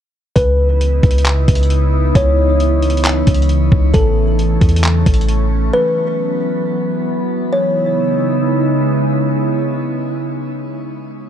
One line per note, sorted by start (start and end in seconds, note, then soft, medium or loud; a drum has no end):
0.36 1.01 C#2 loud
0.36 3.91 C#3 medium
0.36 7.48 E3 medium
0.36 3.91 B3 medium
0.36 3.91 D#4 medium
0.36 3.91 E4 medium
0.36 2.11 B4 loud
0.36 kick loud
0.36 closed hi-hat medium
0.81 closed hi-hat medium
1.03 1.46 C#2 loud
1.03 kick loud
1.03 closed hi-hat soft
1.11 closed hi-hat medium
1.18 closed hi-hat medium
1.25 clap loud
1.25 closed hi-hat medium
1.48 2.13 C#2 loud
1.48 kick medium
1.48 closed hi-hat medium
1.55 closed hi-hat medium
1.63 closed hi-hat soft
1.70 closed hi-hat medium
2.15 3.23 C#2 loud
2.15 3.91 C#5 medium
2.15 kick loud
2.15 closed hi-hat medium
2.60 closed hi-hat medium
2.82 closed hi-hat soft
2.90 closed hi-hat medium
2.97 closed hi-hat medium
3.05 clap loud
3.05 closed hi-hat medium
3.27 3.70 C#2 loud
3.27 kick medium
3.27 closed hi-hat medium
3.34 closed hi-hat medium
3.42 closed hi-hat soft
3.49 closed hi-hat medium
3.72 3.93 C#2 loud
3.72 kick loud
3.94 4.59 A1 loud
3.94 5.72 A3 medium
3.94 5.72 C#4 medium
3.94 5.69 A4 loud
3.94 kick loud
3.94 closed hi-hat medium
4.39 closed hi-hat medium
4.61 5.04 E2 loud
4.61 kick medium
4.61 closed hi-hat soft
4.69 closed hi-hat medium
4.76 closed hi-hat medium
4.84 clap loud
4.84 closed hi-hat medium
5.06 5.71 A1 loud
5.06 kick loud
5.06 closed hi-hat medium
5.14 closed hi-hat medium
5.21 closed hi-hat soft
5.29 closed hi-hat medium
5.73 7.51 F#3 medium
5.73 7.51 B3 medium
5.73 7.49 B4 loud
7.52 10.73 C#3 medium
7.52 10.73 G#3 medium
7.52 10.73 B3 medium
7.52 10.73 D#4 medium
7.52 10.73 E4 medium
7.52 8.83 C#5 medium